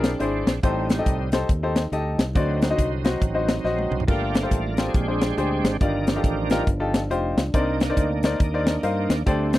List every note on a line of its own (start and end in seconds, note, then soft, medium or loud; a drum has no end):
0.00 0.14 B1 medium
0.00 0.62 E3 medium
0.00 0.61 G#3 medium
0.00 0.60 C4 soft
0.00 4.05 C4 medium
0.00 0.60 D4 medium
0.00 0.62 D4 medium
0.00 0.10 E4 medium
0.00 0.10 G#4 medium
0.00 0.10 A#4 medium
0.00 snare loud
0.00 closed hi-hat medium
0.20 0.43 G#1 medium
0.20 0.49 D4 medium
0.20 0.49 E4 medium
0.20 0.49 G#4 medium
0.20 0.49 C5 medium
0.20 closed hi-hat medium
0.46 0.61 A#1 medium
0.46 snare loud
0.46 closed hi-hat medium
0.63 1.00 A1 loud
0.63 1.29 A2 medium
0.63 1.29 G3 soft
0.63 2.34 G3 medium
0.63 2.34 A3 medium
0.63 1.30 C4 soft
0.63 0.86 D#4 medium
0.63 2.34 D#4 medium
0.63 1.30 D#4 soft
0.63 0.86 G4 medium
0.63 0.86 A4 medium
0.63 0.86 C5 medium
0.63 kick loud
0.63 closed hi-hat medium
0.90 snare loud
0.90 closed hi-hat medium
0.98 1.16 D#4 medium
0.98 1.16 G4 medium
0.98 1.16 A4 medium
0.98 1.16 D#5 medium
1.06 1.43 C2 medium
1.06 kick medium
1.06 closed hi-hat medium
1.32 1.47 D#4 medium
1.32 1.47 G4 medium
1.32 1.47 A4 medium
1.32 1.47 C5 medium
1.32 snare loud
1.32 closed hi-hat medium
1.49 1.86 D#2 medium
1.49 kick medium
1.49 closed hi-hat medium
1.63 1.82 D#4 medium
1.63 1.82 G4 medium
1.63 1.82 A4 medium
1.63 1.82 C5 medium
1.76 snare loud
1.76 closed hi-hat medium
1.92 2.15 D2 medium
1.92 2.21 D#4 medium
1.92 2.22 G4 medium
1.92 2.22 A4 medium
1.92 2.22 D#5 medium
1.92 closed hi-hat medium
2.18 2.33 C2 medium
2.18 snare loud
2.18 closed hi-hat medium
2.35 2.72 D2 loud
2.35 4.06 D3 medium
2.35 3.01 D3 medium
2.35 4.04 F#3 soft
2.35 4.06 F#3 medium
2.35 4.04 C4 soft
2.35 2.58 D#4 medium
2.35 4.06 D#4 medium
2.35 4.04 D#4 medium
2.35 2.58 F#4 medium
2.35 2.59 C5 medium
2.35 2.59 D5 medium
2.35 kick loud
2.35 closed hi-hat medium
2.62 snare loud
2.62 closed hi-hat medium
2.70 2.88 D#4 medium
2.70 2.88 F#4 medium
2.70 2.89 C5 medium
2.70 2.88 D#5 medium
2.78 3.15 C2 medium
2.78 kick medium
2.78 closed hi-hat medium
3.04 3.19 D#4 medium
3.04 3.19 F#4 medium
3.04 3.19 C5 medium
3.04 3.20 D#5 medium
3.04 snare loud
3.04 closed hi-hat medium
3.21 3.58 A1 medium
3.21 kick medium
3.21 closed hi-hat medium
3.34 3.54 D#4 medium
3.34 3.54 F#4 medium
3.34 3.54 C5 medium
3.34 3.54 D#5 medium
3.49 snare loud
3.49 closed hi-hat medium
3.64 3.87 A#1 medium
3.64 3.94 D#4 medium
3.64 3.94 F#4 medium
3.64 3.94 C5 medium
3.64 3.94 D#5 medium
3.64 snare soft
3.79 high tom medium
3.91 4.05 C2 medium
3.91 mid tom medium
4.00 floor tom medium
4.07 4.45 G1 loud
4.07 4.74 G2 medium
4.07 4.94 F3 medium
4.07 4.94 G3 medium
4.07 4.74 A3 medium
4.07 4.91 A#3 soft
4.07 4.77 D4 medium
4.07 4.31 F4 medium
4.07 4.75 F4 medium
4.07 4.31 G4 medium
4.07 4.49 G4 medium
4.07 4.31 A4 medium
4.07 4.94 A4 medium
4.07 4.31 A#4 medium
4.07 kick loud
4.07 crash medium
4.35 snare loud
4.35 closed hi-hat medium
4.42 4.61 F4 medium
4.42 4.61 G4 medium
4.42 4.61 A4 medium
4.42 4.61 C5 medium
4.51 4.88 A1 medium
4.51 kick medium
4.51 closed hi-hat medium
4.77 4.94 C4 medium
4.77 4.94 D4 medium
4.77 4.92 F4 medium
4.77 4.92 G4 medium
4.77 5.61 G#4 medium
4.77 4.92 A4 medium
4.77 4.93 C5 medium
4.77 snare loud
4.77 closed hi-hat medium
4.94 5.31 A#1 medium
4.94 5.60 A#2 medium
4.94 5.80 D3 medium
4.94 5.77 G#3 soft
4.94 5.80 G#3 medium
4.94 5.80 C4 medium
4.94 5.77 C4 soft
4.94 5.77 D4 soft
4.94 5.77 G4 soft
4.94 kick loud
4.94 closed hi-hat medium
5.08 5.27 D4 medium
5.08 5.27 G4 medium
5.08 5.27 G#4 medium
5.08 5.27 C5 medium
5.21 snare loud
5.21 closed hi-hat medium
5.37 5.60 D2 medium
5.37 5.67 D4 medium
5.37 5.67 G4 medium
5.37 5.67 G#4 medium
5.37 5.67 C5 medium
5.37 closed hi-hat medium
5.64 5.78 G#1 loud
5.64 5.72 C5 medium
5.64 snare loud
5.64 closed hi-hat medium
5.80 6.17 G1 medium
5.80 6.47 G2 medium
5.80 6.63 D#3 medium
5.80 7.52 F3 medium
5.80 9.23 G3 medium
5.80 6.07 D4 medium
5.80 9.59 D4 medium
5.80 6.04 D#4 medium
5.80 6.04 F4 medium
5.80 6.04 G4 medium
5.80 6.63 A#4 medium
5.80 6.04 D5 medium
5.80 kick loud
5.80 closed hi-hat medium
6.07 6.64 F3 soft
6.07 6.64 G3 soft
6.07 6.65 D4 medium
6.07 snare loud
6.07 closed hi-hat medium
6.16 6.34 D#4 medium
6.16 6.34 F4 medium
6.16 6.34 G4 medium
6.16 6.34 A4 medium
6.24 6.61 A1 medium
6.24 kick medium
6.24 closed hi-hat medium
6.50 6.65 D#4 medium
6.50 6.65 F4 medium
6.50 6.65 G4 medium
6.50 6.65 A#4 medium
6.50 snare loud
6.50 closed hi-hat medium
6.67 7.10 G1 medium
6.67 kick medium
6.67 closed hi-hat medium
6.80 7.00 D#4 medium
6.80 7.00 F4 medium
6.80 7.00 G4 medium
6.80 7.00 A4 medium
6.94 snare loud
6.94 closed hi-hat medium
7.10 7.33 F1 medium
7.10 7.40 D#4 medium
7.10 7.40 F4 medium
7.10 7.40 G4 medium
7.10 7.40 C5 medium
7.10 closed hi-hat medium
7.37 7.51 C#2 medium
7.37 snare loud
7.37 closed hi-hat medium
7.53 7.91 C2 loud
7.53 8.20 C3 medium
7.53 9.25 A#3 medium
7.53 9.23 A#3 soft
7.53 9.25 C4 medium
7.53 9.23 D4 medium
7.53 9.23 D#4 soft
7.53 7.77 D#4 medium
7.53 7.77 A#4 medium
7.53 7.77 C5 medium
7.53 7.77 D5 medium
7.53 kick loud
7.53 closed hi-hat medium
7.80 snare loud
7.80 closed hi-hat medium
7.90 8.07 D#4 medium
7.90 8.07 A#4 medium
7.90 8.07 C5 medium
7.90 8.07 D5 medium
7.97 8.34 D2 medium
7.97 kick medium
7.97 closed hi-hat medium
8.23 8.38 D#4 medium
8.23 8.38 A#4 medium
8.23 8.38 C5 medium
8.23 8.39 D5 medium
8.23 snare loud
8.23 closed hi-hat medium
8.40 8.77 D#2 medium
8.40 kick loud
8.40 closed hi-hat medium
8.54 8.73 D#4 medium
8.54 8.73 A#4 medium
8.54 8.73 C5 medium
8.54 8.73 D5 medium
8.67 snare loud
8.67 closed hi-hat medium
8.83 9.06 G2 medium
8.83 9.12 D#4 medium
8.83 9.12 A#4 medium
8.83 9.13 C5 medium
8.83 9.13 F5 medium
8.83 closed hi-hat medium
9.09 9.24 D#2 medium
9.09 snare loud
9.09 closed hi-hat medium
9.26 9.59 D2 loud
9.26 9.59 D3 medium
9.26 9.59 G3 medium
9.26 9.59 G3 soft
9.26 9.59 A3 medium
9.26 9.59 A3 soft
9.26 9.59 C4 medium
9.26 9.49 G4 medium
9.26 9.50 A4 medium
9.26 9.50 C5 medium
9.26 9.50 D5 loud
9.26 kick loud
9.26 closed hi-hat medium
9.53 snare loud
9.53 closed hi-hat medium